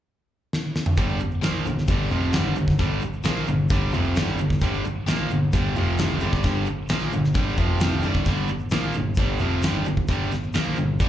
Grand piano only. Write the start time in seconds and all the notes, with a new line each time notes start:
0.98 G1
1.20 G1
1.42 A#1
1.66 G1
1.88 G1
2.11 F1
2.33 G1
2.56 G1
2.79 G1
3.02 G1
3.25 A#1
3.47 G1
3.70 G1
3.93 F1
4.16 G1
4.39 G1
4.62 G1
4.85 G1
5.07 A#1
5.30 G1
5.54 G1
5.77 F1
5.99 F1
6.22 G1
6.44 G1
6.67 G1
6.90 A#1
7.13 G1
7.36 G1
7.58 F1
7.80 F1
8.02 G1
8.26 G1
8.48 G1
8.71 A#1
8.94 G1
9.17 G1
9.40 F1
9.62 G1
9.85 G1
10.09 G1
10.31 G1
10.54 A#1
10.77 G1
11.01 G1